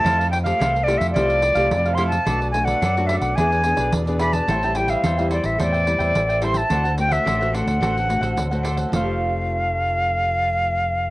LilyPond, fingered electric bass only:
\new Staff \with { instrumentName = "Fingered electric bass" } { \clef bass \time 4/4 \key f \major \tempo 4 = 108 f,4 c,8. f,16 c,8. c,16 f,4 | b,,4 fis,8. b,,16 e,8. b,,16 e,4 | a,,4 e,8. a,,16 e,8. e,16 a,,4 | d,4 a,,8. d,16 a,,8. a,,16 d,4 |
f,,1 | }